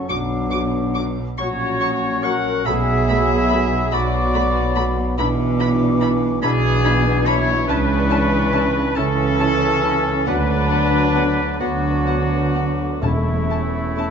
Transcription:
Already playing: oboe A4, flute C#6
0.09 double bass section B1, cello section B2, bassoon F#3, french horn section F#3 D4, viola section F#3 F#4, violin section D6, flute D6
0.51 viola section F#3 F#4, violin section D6
0.94 viola section F#3 F#4, violin section D6
1.37 double bass section A#1, cello section A#2, bassoon F#3, french horn section F#3 C#4, viola section F#3 F#4, violin section F#4 C#6, clarinet F#4, trumpet section C#5, oboe C#5, flute C#6
1.81 viola section F#3 F#4, violin section C#6
2.23 viola section F#3 F#4, clarinet A#4, violin section A#4 C#6, trumpet section F#5, oboe F#5
2.65 double bass section B1, cello section B2, bassoon F#3, french horn section F#3 B3, viola section A3 F#4, violin section G#4 B5, clarinet G#4, trumpet section E5, oboe E5, flute B5
3.08 viola section A3 F#4, violin section B5
3.50 viola section A3 F#4, violin section B5
3.91 double bass section B1, cello section B2, bassoon F#3, french horn section F#3 B3, viola section A3 F#4, violin section F#4 B5, clarinet F#4, trumpet section D5, oboe D5, flute B5
4.34 viola section A3 F#4, violin section B5
4.75 viola section A3 F#4, violin section B5
5.18 double bass section B1, cello section B2, bassoon E3, french horn section E3 D4, viola section D4 E4, violin section B5, flute D6
5.59 viola section D4 E4, violin section B5
6.01 viola section D4 E4, violin section B5
6.42 double bass section B1, cello section B2, bassoon E3, french horn section E3 D4, violin section B3 B5, clarinet B3, viola section D4 E4, trumpet section G#4, oboe G#4, flute D6
6.84 viola section D4 E4, violin section B5
7.26 viola section D4 E4, violin section E4 B5, clarinet E4, oboe C#5, trumpet section C#5
7.67 double bass section C#2, cello section C#3, bassoon E3, french horn section E3 C#4, viola section C#4 E4, violin section D4 A5, clarinet D4, oboe B4, trumpet section B4, flute C#6
8.10 viola section C#4 E4, violin section A5
8.53 viola section C#4 E4, violin section A5
8.95 double bass section C#2, cello section C#3, bassoon E3, french horn section E3 C#4, clarinet C#4, violin section C#4 A5, viola section C#4 E4, trumpet section A4, oboe A4, flute C#6
9.39 viola section C#4 E4, violin section A5
9.82 viola section C#4 E4, violin section A5
10.26 double bass section D2, cello section D3, french horn section F#3 D4, bassoon F#3, viola section B3 F#4, clarinet D4, violin section D4 F#5, trumpet section B4, oboe B4, flute D6
10.70 viola section B3 F#4, violin section F#5
11.14 viola section B3 F#4, violin section F#5
11.60 double bass section D2, cello section D3, french horn section F#3 D4, bassoon F#3, viola section B3 F#4, violin section B3 F#5, clarinet B3, oboe F#4, trumpet section F#4, flute D6
12.06 viola section B3 F#4, violin section F#5
12.54 viola section B3 F#4, violin section F#5
13.01 double bass section E1, cello section E2, timpani E2, bassoon A3, violin section A3 A5, french horn section A3 C#4, clarinet A3, viola section C#4 E4, trumpet section E4, oboe E4, flute C#6
13.49 viola section C#4 E4, violin section A5
13.96 viola section C#4 E4, violin section A5

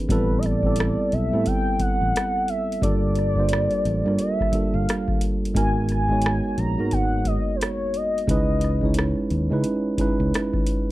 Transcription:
Already playing: tine electric piano E3 B3 C#4 D#4 G#4 A#4 B4
0.09 fingered electric bass A1, tine electric piano G3 B3 C4 E4 A4, soft synth lead B4, kick, closed hi-hat
0.38 soft synth lead E5
0.43 soft synth lead D5, cross-stick, closed hi-hat
0.63 tine electric piano G3 B3 C4 E4 A4, kick
0.76 closed hi-hat
0.80 cross-stick
1.12 fingered electric bass B1, soft synth lead E5, closed hi-hat
1.32 fingered electric bass A2, tine electric piano G3 B3 C4 E4 A4
1.46 soft synth lead G5, kick, closed hi-hat
1.79 soft synth lead F#5, muted fingered electric bass stroke, kick, closed hi-hat
2.01 fingered electric bass A1
2.16 cross-stick, closed hi-hat
2.48 soft synth lead E5, closed hi-hat
2.72 closed hi-hat
2.81 fingered electric bass G1, tine electric piano G3 A#3 D4 F4 A4, soft synth lead D5, kick, closed hi-hat
3.15 cross-stick, closed hi-hat
3.36 tine electric piano G3 A#3 D4 F4 C5, kick
3.49 closed hi-hat
3.53 cross-stick
3.71 closed hi-hat
3.85 fingered electric bass A1, closed hi-hat
4.05 fingered electric bass G2, tine electric piano G3 A#3 D4 F4 A#4, cross-stick
4.19 soft synth lead E5, closed hi-hat
4.41 kick, cross-stick
4.52 tine electric piano G3 A#3 D4 F4 A4, muted fingered electric bass stroke, kick, closed hi-hat
4.74 fingered electric bass G1, soft synth lead F5
4.89 cross-stick, closed hi-hat
5.08 kick
5.21 closed hi-hat
5.45 closed hi-hat
5.54 fingered electric bass G#1, tine electric piano G#3 B3 D#4 F#4 A#4, soft synth lead G#5, kick, closed hi-hat
5.89 soft synth lead G#5, cross-stick, closed hi-hat
6.09 tine electric piano G#3 B3 D#4 F#4 C#5, kick
6.22 closed hi-hat
6.26 cross-stick
6.58 fingered electric bass A#1, soft synth lead A#5, closed hi-hat
6.78 fingered electric bass G#2, tine electric piano G#3 A#3 D#4 F#4 A#4
6.85 tine electric piano B3
6.91 soft synth lead F#5, kick, closed hi-hat
7.25 soft synth lead D#5, kick, closed hi-hat
7.56 soft synth lead C5
7.61 soft synth lead C#5, cross-stick, closed hi-hat
7.94 soft synth lead D#5, closed hi-hat
8.18 closed hi-hat
8.27 fingered electric bass C#2, tine electric piano G#3 C#4 D#4 E4 B4, soft synth lead D#5, kick, closed hi-hat
8.61 cross-stick, closed hi-hat
8.81 tine electric piano G#3 C#4 D#4 E4, kick
8.85 tine electric piano C#5
8.94 closed hi-hat
8.99 cross-stick
9.30 fingered electric bass D#2, closed hi-hat
9.50 fingered electric bass C#3, tine electric piano G#3 C#4 D#4 E4 B4
9.64 closed hi-hat
9.98 tine electric piano G#3 C#4 D#4 E4 B4, muted fingered electric bass stroke, kick, closed hi-hat
10.20 fingered electric bass C#2
10.34 cross-stick, closed hi-hat
10.54 kick
10.67 closed hi-hat

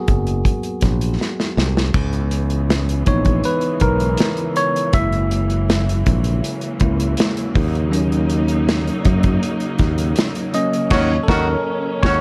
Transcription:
Already playing: tine electric piano F#3 A#3 B3 F#4 G#4 A#4
0.08 fingered electric bass F#1, kick, closed hi-hat
0.27 closed hi-hat
0.45 kick, closed hi-hat
0.63 closed hi-hat
0.81 fingered electric bass A#1, kick, snare, closed hi-hat
1.01 closed hi-hat
1.21 snare
1.40 snare
1.57 fingered electric bass C2, snare
1.77 snare
1.94 fingered electric bass C#2, string section C#3 E3 G#3 B3, kick, splash
2.13 closed hi-hat
2.31 closed hi-hat
2.50 closed hi-hat
2.70 snare, closed hi-hat
2.89 closed hi-hat
3.06 fingered electric bass A#1, tine electric piano E3 B3 D#4 C#5, kick, closed hi-hat
3.25 kick, closed hi-hat
3.44 tine electric piano B4, closed hi-hat
3.61 closed hi-hat
3.80 fingered electric bass B1, tine electric piano A#4, kick, closed hi-hat
4.00 closed hi-hat
4.17 snare, closed hi-hat
4.37 closed hi-hat
4.56 tine electric piano C#5, closed hi-hat
4.76 closed hi-hat
4.93 fingered electric bass F#1, string section F#3 A#3, tine electric piano G#3 A#3 E4 E5, kick, closed hi-hat
5.12 closed hi-hat
5.31 closed hi-hat
5.50 closed hi-hat
5.70 snare, closed hi-hat
5.89 closed hi-hat
6.06 fingered electric bass A#1, kick, closed hi-hat
6.24 closed hi-hat
6.44 closed hi-hat
6.61 closed hi-hat
6.80 fingered electric bass C#2, tine electric piano G#3 A#3 E4, kick, closed hi-hat
7.00 closed hi-hat
7.17 snare, closed hi-hat
7.37 closed hi-hat
7.55 fingered electric bass D#2, string section D#4, kick, open hi-hat
7.75 closed hi-hat
7.91 tine electric piano F#3 A#3 C#4, closed hi-hat
8.12 closed hi-hat
8.30 closed hi-hat
8.48 closed hi-hat
8.69 snare, closed hi-hat
8.87 closed hi-hat
9.05 fingered electric bass F#2, kick, closed hi-hat
9.23 kick, closed hi-hat
9.43 closed hi-hat
9.60 closed hi-hat
9.79 fingered electric bass D#2, kick, snare, closed hi-hat
9.98 closed hi-hat
10.16 snare, closed hi-hat
10.35 closed hi-hat
10.53 tine electric piano F#3 A#3 C#4 D#5, string section C#4, closed hi-hat
10.73 closed hi-hat
10.90 fingered electric bass D#2, horn section D#3 C#4 F#4, tine electric piano C#5, kick, snare, crash
11.23 tine electric piano A4
11.28 fingered electric bass D#2, horn section D#3 C#4 F#4, tine electric piano A#4, kick, snare
12.03 fingered electric bass D#2, horn section D#3 C#4 F#4, tine electric piano C#5, kick, snare

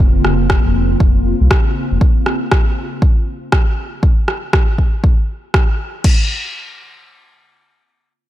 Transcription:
Already playing: analog synth bass F1, ambient pad C#3 A#3 C4 F4
0.25 analog synth bass F1, cross-stick
0.50 kick, cross-stick
0.65 analog synth bass F1
1.00 analog synth bass F1, kick
1.41 analog synth bass C2
1.51 kick, cross-stick
1.91 analog synth bass F1
2.01 kick
2.26 cross-stick
2.52 kick, cross-stick
3.02 kick
3.52 kick, cross-stick
4.03 kick
4.28 cross-stick
4.53 kick, cross-stick
4.78 kick
5.04 kick
5.54 kick, cross-stick
6.04 kick, crash

